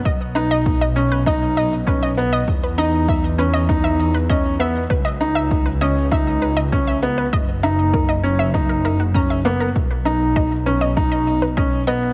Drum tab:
SH |-x-x-x-x|-x-x-x-x|-x-x-x-x|-x-x-x-x|
BD |o-o-o-o-|o-o-o-o-|o-o-o-o-|o-o-o-o-|

SH |-x-x-x-x|
BD |o-o-o-o-|